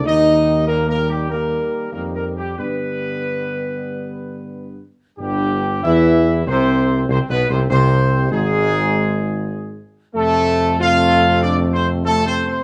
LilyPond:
<<
  \new Staff \with { instrumentName = "Trumpet section" } { \time 4/4 \key g \mixolydian \tempo 4 = 96 ees''4 \tuplet 3/2 { bes'8 bes'8 g'8 } bes'4 \tuplet 3/2 { bes'8 bes'8 g'8 } | b'2.~ b'8 r8 | g'4 e''4 c''4 \tuplet 3/2 { c''8 b'8 c''8 } | c''4 aes'2~ aes'8 r8 |
a'4 f''4 d''8 c''8 \tuplet 3/2 { a'8 c''8 c''8 } | }
  \new Staff \with { instrumentName = "French horn section" } { \time 4/4 \key g \mixolydian ees'4 \tuplet 3/2 { bes8 bes8 g8 } bes4 \tuplet 3/2 { bes8 bes8 g8 } | b2.~ b8 r8 | g4 e'4 c'4 \tuplet 3/2 { c'8 b8 c'8 } | c'4 aes2~ aes8 r8 |
a4 f'4 d'8 c'8 \tuplet 3/2 { a8 c'8 c'8 } | }
  \new Staff \with { instrumentName = "Trombone section" } { \clef bass \time 4/4 \key g \mixolydian <ees g>4 <ees g>4 <ees g>4 <ees g>4 | <d g>2.~ <d g>8 r8 | g,4 e4 c4 \tuplet 3/2 { c8 b,8 c8 } | c4 aes,2~ aes,8 r8 |
<c a>4 <c a>2 <c a>4 | }
  \new Staff \with { instrumentName = "Tuba" } { \clef bass \time 4/4 \key g \mixolydian ees,2~ ees,8 r8 f,4 | g,2.~ g,8 r8 | g,,4 e,4 c,4 \tuplet 3/2 { c,8 b,,8 c,8 } | c,4 aes,,2~ aes,,8 r8 |
f,1 | }
>>